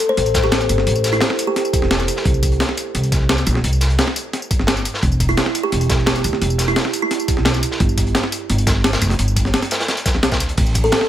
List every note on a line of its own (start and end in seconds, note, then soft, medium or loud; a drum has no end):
0.00 closed hi-hat loud
0.00 closed hi-hat medium
0.00 tambourine medium
0.09 0.30 C5 medium
0.17 0.68 A1 loud
0.17 closed hi-hat medium
0.26 closed hi-hat soft
0.26 tambourine soft
0.34 kick loud
0.34 snare loud
0.34 closed hi-hat medium
0.34 closed hi-hat loud
0.34 tambourine medium
0.44 0.64 G4 medium
0.52 snare loud
0.52 closed hi-hat medium
0.61 closed hi-hat soft
0.61 tambourine soft
0.69 0.85 G1 loud
0.69 closed hi-hat medium
0.69 closed hi-hat loud
0.69 tambourine medium
0.78 snare soft
0.87 1.20 A1 loud
0.87 closed hi-hat medium
0.96 tambourine soft
1.04 snare soft
1.04 closed hi-hat medium
1.04 tambourine medium
1.13 1.33 E4 medium
1.13 closed hi-hat soft
1.21 snare loud
1.21 closed hi-hat medium
1.30 snare medium
1.39 closed hi-hat medium
1.39 tambourine medium
1.47 1.73 G4 loud
1.56 snare soft
1.56 closed hi-hat medium
1.65 tambourine soft
1.73 kick loud
1.73 closed hi-hat medium
1.73 tambourine medium
1.82 2.07 E1 medium
1.82 snare soft
1.91 snare loud
1.91 closed hi-hat medium
2.00 tambourine soft
2.08 closed hi-hat medium
2.08 tambourine medium
2.16 snare soft
2.25 2.59 C2 loud
2.25 kick loud
2.25 closed hi-hat medium
2.34 tambourine soft
2.43 kick medium
2.43 closed hi-hat medium
2.43 tambourine medium
2.52 closed hi-hat soft
2.60 snare loud
2.60 closed hi-hat medium
2.69 snare soft
2.77 closed hi-hat medium
2.77 tambourine medium
2.95 3.45 C2 loud
2.95 closed hi-hat medium
3.03 closed hi-hat soft
3.03 tambourine soft
3.12 kick loud
3.12 snare soft
3.12 closed hi-hat medium
3.12 tambourine medium
3.29 snare loud
3.29 closed hi-hat medium
3.38 closed hi-hat soft
3.38 tambourine soft
3.46 3.62 A#1 loud
3.46 closed hi-hat medium
3.46 tambourine medium
3.55 snare soft
3.64 3.97 C2 loud
3.64 closed hi-hat medium
3.73 tambourine soft
3.81 snare soft
3.81 closed hi-hat medium
3.81 tambourine medium
3.90 closed hi-hat soft
3.98 snare loud
3.98 closed hi-hat medium
4.08 snare soft
4.16 closed hi-hat medium
4.16 tambourine medium
4.33 snare soft
4.33 closed hi-hat medium
4.42 tambourine soft
4.51 kick loud
4.51 closed hi-hat medium
4.51 tambourine medium
4.59 4.84 G1 medium
4.59 snare soft
4.67 snare loud
4.67 closed hi-hat medium
4.77 tambourine soft
4.85 closed hi-hat medium
4.85 tambourine medium
4.94 snare soft
5.02 5.36 E1 loud
5.02 kick loud
5.02 closed hi-hat medium
5.12 tambourine soft
5.20 kick medium
5.20 closed hi-hat medium
5.20 tambourine medium
5.29 5.34 E4 medium
5.29 closed hi-hat soft
5.37 5.43 E4 medium
5.37 snare loud
5.37 closed hi-hat medium
5.46 snare soft
5.55 closed hi-hat medium
5.55 tambourine medium
5.63 5.84 G4 medium
5.72 6.23 E1 loud
5.72 closed hi-hat medium
5.81 closed hi-hat soft
5.81 tambourine soft
5.89 kick loud
5.89 snare loud
5.89 closed hi-hat medium
5.89 tambourine medium
6.06 6.28 G4 medium
6.06 snare loud
6.06 closed hi-hat medium
6.15 closed hi-hat soft
6.15 tambourine soft
6.24 6.40 D2 loud
6.24 closed hi-hat medium
6.24 tambourine medium
6.33 snare soft
6.42 6.75 E1 loud
6.42 closed hi-hat medium
6.50 tambourine soft
6.58 snare soft
6.58 closed hi-hat medium
6.58 tambourine medium
6.68 7.01 E4 loud
6.68 closed hi-hat soft
6.76 snare loud
6.76 closed hi-hat medium
6.85 snare soft
6.93 closed hi-hat medium
6.93 tambourine medium
7.02 7.37 E4 medium
7.11 snare soft
7.11 closed hi-hat medium
7.20 tambourine soft
7.28 kick loud
7.28 closed hi-hat medium
7.28 tambourine medium
7.37 7.62 B1 medium
7.37 snare soft
7.45 snare loud
7.45 closed hi-hat medium
7.54 tambourine soft
7.63 closed hi-hat medium
7.63 tambourine medium
7.71 snare soft
7.80 8.14 G1 loud
7.80 kick loud
7.80 closed hi-hat medium
7.89 tambourine soft
7.98 kick medium
7.98 closed hi-hat medium
7.98 tambourine medium
8.07 closed hi-hat soft
8.15 snare loud
8.15 closed hi-hat medium
8.24 snare soft
8.32 closed hi-hat medium
8.32 tambourine medium
8.50 9.00 G1 loud
8.50 closed hi-hat medium
8.58 closed hi-hat soft
8.58 tambourine soft
8.67 kick loud
8.67 snare loud
8.67 closed hi-hat medium
8.67 tambourine medium
8.84 snare loud
8.84 closed hi-hat medium
8.93 snare loud
8.93 closed hi-hat medium
8.93 tambourine soft
9.02 9.17 F1 loud
9.02 closed hi-hat loud
9.02 tambourine medium
9.10 snare soft
9.10 closed hi-hat medium
9.19 9.52 G1 loud
9.19 closed hi-hat medium
9.28 tambourine soft
9.36 kick medium
9.36 closed hi-hat loud
9.36 closed hi-hat medium
9.36 tambourine medium
9.45 snare soft
9.54 snare loud
9.54 closed hi-hat medium
9.62 snare medium
9.62 closed hi-hat medium
9.62 tambourine soft
9.71 snare loud
9.71 closed hi-hat loud
9.71 closed hi-hat medium
9.71 tambourine medium
9.80 snare loud
9.80 closed hi-hat medium
9.88 snare loud
9.88 snare soft
9.88 closed hi-hat medium
9.97 closed hi-hat medium
9.97 tambourine soft
10.06 kick loud
10.06 snare loud
10.06 closed hi-hat medium
10.06 tambourine medium
10.14 10.23 D2 medium
10.14 snare soft
10.23 10.40 A#1 loud
10.23 snare loud
10.23 closed hi-hat medium
10.32 kick medium
10.32 snare loud
10.32 closed hi-hat medium
10.32 tambourine soft
10.40 10.56 D2 medium
10.40 closed hi-hat loud
10.40 tambourine medium
10.49 closed hi-hat medium
10.57 10.91 A1 loud
10.57 kick loud
10.57 closed hi-hat loud
10.57 closed hi-hat medium
10.57 ride medium
10.67 tambourine soft
10.74 kick medium
10.74 closed hi-hat medium
10.74 ride soft
10.74 tambourine medium
10.84 10.89 A4 medium
10.84 closed hi-hat soft
10.92 10.98 A4 medium
10.92 snare loud
10.92 closed hi-hat medium
10.92 ride medium
11.01 snare medium